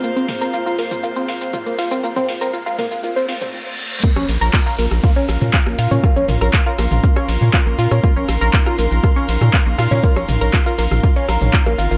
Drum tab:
CC |----------------|----------------|x---------------|----------------|
HH |--o---o---o---o-|--o---o---o-----|--o---o---o---o-|--o---o---o---o-|
SH |xx-xxx-xxx-xxx-x|xx-xxx-xxx-x----|x-xxx-xxx-xxx-xx|x-xxx-xxx-xxx-xx|
CP |----------------|----------------|----x-------x---|----x-------x---|
SD |----------------|----------------|-r--r--r--r--r--|r--r--r--r--r--r|
T2 |--o----o----o---|-o----o----o----|-----------o---o|--o----o---o----|
BD |----------------|----------------|o---o---o---o---|o---o---o---o---|

CC |----------------|----------------|
HH |--o---o---o---o-|--o---o---o---o-|
SH |x-xxx-xxx-xxx-xx|x-xxx-xxx-xxx-xx|
CP |----x-------x---|----x-------x---|
SD |--r--r--r--r--r-|-r--r--r--r--r--|
T2 |-----------o---o|--o----o---o----|
BD |o---o---o---o---|o---o---o---o---|